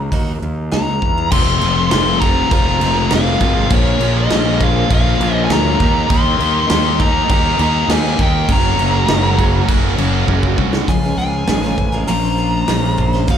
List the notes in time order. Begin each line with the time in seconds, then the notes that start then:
Already playing: A#5
0.12 D#2 A#3 D#4 F#4 A#4, kick, open hi-hat
0.42 D#2, muted steel-string acoustic guitar stroke
0.71 C#2 A#3 D#4 F#4 A#4 A#5, snare, open hi-hat
1.02 E2, kick
1.17 muted steel-string acoustic guitar stroke
1.31 F1 F2 C3 F3 A#3 C4 F4 A#4 C5 A#5 C6, kick, crash
1.61 F1 F2 C3 F3 A#3 C4 F4, crash
1.91 F1 F2 C3 F3 A#3 C4 F4 C6, snare, crash
2.20 F2 C3 F3 A#3 C4 F4 A#5, kick, crash
2.50 F1 F2 C3 F3 A#3 C4 F4 A#5, kick, crash
2.54 F3
2.81 F1 F2 C3 F3 A#3 C4 F4, crash
3.11 F1 F2 C3 F3 A#3 C4 F4 F5, snare, crash
3.40 G#1 F2 C3 F3 A#3 C4 F4, kick, crash
3.70 A#1 A#2 F3 A#3 C#4 F4 C#5, kick, crash
4.00 A#1 A#2 F3 A#3 C#4 F4, crash
4.18 D#5
4.30 A#1 A#2 F3 A#3 C#4 F4, snare, crash
4.61 A#2 F3 A#3 C#4 F4 F5, kick, crash
4.90 A#1 A#2 F3 A#3 C#4 F4 F5, kick, crash
5.20 A#1 A#2 F3 A#3 C#4 F4, crash
5.45 G#5
5.50 D2 A#2 F3 A#3 C#4 F4 A#5, snare, crash
5.80 D#2 D#3 G3 A#3 D#4 G4 D#5, kick, crash
6.10 D#2 D#3 A#3 D#4 G4 C6, kick, crash
6.40 D#2 D#3 A#3 D#4 G4, crash
6.70 D#2 D#3 A#3 D#4 G4 C6, snare, crash
6.99 D#3 A#3 D#4 G4 A#5, kick, crash
7.29 D#2 D#3 A#3 D#4 G4 A#5, kick, crash
7.59 D#2 D#3 A#3 D#4 G4 A#5, crash
7.88 D#2 D#3 A#3 D#4 G4 G#5, snare, crash
8.19 D#2 D#3 A#3 D#4 G4 G5, kick, crash
8.48 F#1 F#2 C#3 F#3 A#3 C#4 F#4 C#5 A#5, kick, crash
8.79 F#1 F#2 C#3 F#3 A#3 C#4 F#4, crash
9.08 F#1 F#2 C#3 F#3 A#3 C#4 F#4, snare, crash
9.38 F#2 C#3 F#3 A#3 C#4 F#4, kick, crash
9.68 F#1 F#2 C#3 F#3 A#3 C#4 F#4, kick, crash
9.97 F#1 F#2 C#3 F#3 A#3 C#4 F#4, crash
10.27 F#1 F#2 C#3 F#3 A#3 C#4 F#4, kick
10.43 kick
10.57 C2 F#2 C#3 F#3 A#3 C#4 F#4, kick
10.73 snare
10.88 C#2 C#3 F3 G#3 C#4 F4 A#4 G#5, kick, open hi-hat
11.03 G#3 C#4 F4 A#4
11.18 C#2 G#3 C#4 F4 A#4 G#5
11.47 A1 C#3 F3 G#3 C#4 F4 A#4, snare, open hi-hat
11.63 G#3 C#4 F4 A#4
11.78 muted steel-string acoustic guitar stroke, kick
11.92 G#3 C#4 F4 A#4
12.07 A#1 A#2 F3 A#3 C#4 F4 C5 A#5, open hi-hat
12.23 A#3 C#4 F4 C5
12.37 A#3 C#4 F4 C5
12.68 A#1 A#2 F3 A#3 C#4 F4 C5, snare, open hi-hat
12.98 A#3 C#4 F4 C5, kick
13.13 A#3 C#4 F4 C5, snare
13.27 D#2 D#3 A#3 D#4 F#4 A#4 F5, kick, open hi-hat